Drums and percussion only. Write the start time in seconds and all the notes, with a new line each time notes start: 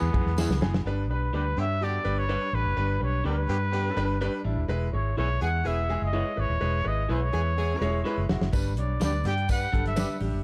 0.14 kick, ride, muted conga, high conga
0.27 snare
0.37 snare, tambourine, muted conga, high conga
0.51 snare
0.61 snare, high conga
0.74 snare
8.29 snare
8.41 snare
8.53 kick, closed hi-hat, tambourine, muted conga, low conga
8.76 closed hi-hat, muted conga, high conga
9.00 snare, closed hi-hat, tambourine, muted conga
9.12 high conga
9.24 closed hi-hat, muted conga, low conga
9.38 closed hi-hat
9.48 kick, closed hi-hat, tambourine, muted conga
9.74 kick, closed hi-hat, muted conga, high conga
9.86 snare, closed hi-hat
9.96 snare, closed hi-hat, tambourine, high conga
10.08 low conga
10.20 open hi-hat, muted conga, high conga